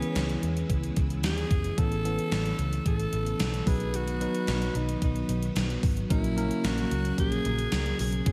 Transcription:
Already playing: C#3 E3 G#3 B3 C#4 E4 G#4 B4
0.02 closed hi-hat
0.16 C#2, snare, clap, closed hi-hat
0.29 closed hi-hat
0.43 E2, closed hi-hat
0.57 closed hi-hat
0.70 C#2, kick, closed hi-hat
0.83 closed hi-hat
0.96 C#2, kick, clap, closed hi-hat
1.10 closed hi-hat
1.24 D#2 G#4, snare, clap, closed hi-hat
1.38 closed hi-hat
1.51 F#1, kick, closed hi-hat
1.64 closed hi-hat
1.78 A1 C#3 E3 A3 B3 C#4 A4, kick, closed hi-hat
1.92 closed hi-hat
2.04 E3 B3 C#4 A4, closed hi-hat
2.19 closed hi-hat
2.32 A1, snare, clap, closed hi-hat
2.46 closed hi-hat
2.59 C#2, closed hi-hat
2.73 closed hi-hat
2.86 A1 A4, kick, closed hi-hat
3.00 closed hi-hat
3.13 A1, closed hi-hat
3.26 closed hi-hat
3.40 B1, snare, clap, closed hi-hat
3.54 closed hi-hat
3.66 B1 D#3 F#3 B3 D#4 G#4 B4, kick, open hi-hat
3.80 closed hi-hat
3.94 F#4, closed hi-hat
4.08 closed hi-hat
4.20 F#3 B3 D#4 B4, closed hi-hat
4.35 closed hi-hat
4.48 B1, snare, clap, closed hi-hat
4.62 closed hi-hat
4.75 B1 D#4, closed hi-hat
4.89 closed hi-hat
5.02 B1 D#4, kick, closed hi-hat
5.16 closed hi-hat
5.29 B1, closed hi-hat
5.43 closed hi-hat
5.56 B1, snare, clap, closed hi-hat
5.70 closed hi-hat
5.83 G#1, kick, open hi-hat
5.97 closed hi-hat
6.10 A#1 C#3 F#3 A#3 C#4 E4 A#4, kick, closed hi-hat
6.24 closed hi-hat
6.37 F#3 A#3 C#4 A#4, closed hi-hat
6.51 closed hi-hat
6.64 A#1 F#4, snare, clap, closed hi-hat
6.78 closed hi-hat
6.91 C#2, closed hi-hat
7.05 closed hi-hat
7.18 A#1 G#4, kick, closed hi-hat
7.32 closed hi-hat
7.45 A#1, closed hi-hat
7.59 closed hi-hat
7.72 C#2, snare, clap, closed hi-hat
7.86 closed hi-hat
7.99 B1 G#4, open hi-hat
8.12 closed hi-hat
8.26 C#2 E3 G#3 B3 C#4 E4 G#4, kick, closed hi-hat, high tom

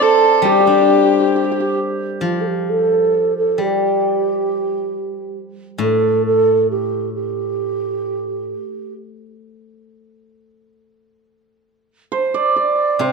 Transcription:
Already playing: C5 D5
0.01 A4
0.38 A4
0.42 G3 G4
0.46 G4
0.52 G4
0.60 G4
0.66 D4 G4
0.73 G4
0.82 G4
0.90 G4
0.98 G4
1.03 G4
1.14 G4
1.20 G4
1.28 G4
1.36 G4
1.44 G4
1.52 G4
1.60 G4
2.21 F3 F4
2.40 A4
2.47 G4
2.69 A4
3.37 A4
3.58 G3 G4
5.78 A2 A4
6.26 A4
6.70 G4
7.14 G4
12.12 C5
12.34 D5
12.56 D5
12.99 C3 C5

